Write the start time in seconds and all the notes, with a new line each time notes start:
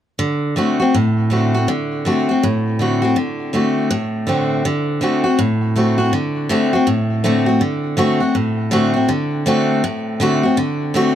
0.19 D3
0.56 D3 A3 C4 F#4
0.80 C4 F#4
0.94 A2
1.30 D3 A3 C4 F#4
1.54 C4 F#4
1.68 D3
2.05 D3 A3 C4 F#4
2.29 C4 F#4
2.43 A2
2.79 D3 A3 C4 F#4
3.02 C4 F#4
3.16 D3
3.53 D3 A3 C4 F#4
3.91 A2
4.27 D3 A3 C4 F#4
4.65 D3
5.01 D3 A3 C4 F#4
5.24 C4 F#4
5.39 A2
5.76 D3 A3 C4 F#4
5.98 C4 F#4
6.13 D3
6.49 D3 A3 C4 F#4
6.73 C4 F#4
6.87 A2
7.24 D3 A3 C4 F#4
7.46 C4 F#4
7.61 D3
7.97 D3 A3 C4 F#4
8.20 C4 F#4
8.35 A2
8.71 D3 A3 C4 F#4
8.94 C4 F#4
9.09 D3
9.46 D3 A3 C4 F#4
9.84 A2
10.20 D3 A3 C4 F#4
10.43 C4 F#4
10.57 D3
10.94 D3 A3 C4 F#4